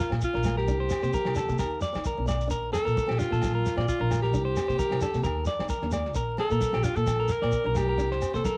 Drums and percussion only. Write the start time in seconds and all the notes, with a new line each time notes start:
0.00 snare
0.12 snare, low agogo
0.21 kick, shekere
0.35 snare
0.43 snare, high conga, low agogo, shekere
0.58 snare
0.68 kick, shekere
0.90 snare, low agogo, shekere
1.03 shekere
1.13 kick, muted conga, high conga, shekere
1.25 snare, low agogo
1.35 snare, high conga, low conga, shekere
1.49 shekere
1.59 kick, snare, muted conga, low agogo, shekere
1.81 snare, muted conga, shekere
1.94 snare, low agogo, shekere
2.05 kick, high conga, low conga, shekere
2.28 snare, low agogo, shekere
2.41 shekere
2.50 kick, muted conga, shekere
2.74 snare, low agogo, shekere
2.87 shekere
2.97 kick, muted conga, high conga, shekere
3.09 snare, low agogo
3.20 snare, shekere
3.33 snare, shekere
3.42 kick, snare, muted conga, high conga, low agogo, shekere
3.66 snare, shekere
3.78 snare, low agogo
3.89 kick, shekere
4.11 snare, high conga, low agogo, shekere
4.24 snare
4.34 kick, shekere
4.56 snare, low agogo, shekere
4.69 snare, shekere
4.79 kick, muted conga, high conga, shekere
4.91 snare, low agogo
5.01 snare, high conga, shekere
5.14 snare, shekere
5.23 kick, snare, muted conga, low agogo, shekere
5.45 snare, shekere
5.59 snare, low agogo
5.69 kick, high conga, low conga, shekere
5.82 snare
5.91 snare, low agogo, shekere
6.05 snare
6.15 kick, muted conga, shekere
6.38 snare, low agogo
6.51 shekere
6.61 kick, muted conga, high conga, shekere
6.73 snare, low agogo
6.84 snare, shekere
6.96 snare, shekere
7.07 kick, snare, muted conga, high conga, low agogo, shekere
7.28 snare, shekere
7.42 snare, low agogo
7.52 kick, shekere
7.75 snare, high conga, low agogo, shekere
7.98 kick, snare, muted conga, shekere
8.11 snare
8.22 low agogo, shekere
8.34 snare, shekere
8.45 kick, snare, muted conga, high conga, shekere